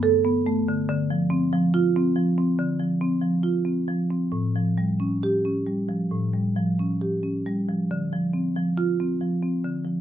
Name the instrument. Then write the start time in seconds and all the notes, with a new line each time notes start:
marimba
Already playing: G2 B3
0.03 A4
0.25 B3
0.46 A3
0.69 D3
0.89 D3
1.10 F3
1.30 C4
1.53 F3
1.74 F4
1.96 C4
2.16 F3
2.38 C4
2.59 D3
2.80 F3
3.01 C4
3.22 F3
3.43 F4
3.65 C4
3.88 F3
4.11 C4
4.32 A2
4.55 F3
4.78 G3
5.00 C#4
5.23 G4
5.45 C#4
5.66 G3
5.89 F3
6.11 A2
6.33 G3
6.56 F3
6.79 C#4
7.01 G4
7.23 C#4
7.46 G3
7.69 F3
7.91 D3
8.13 F3
8.33 C4
8.56 F3
8.78 F4
9.00 C4
9.21 F3
9.42 C4
9.65 D3
9.85 F3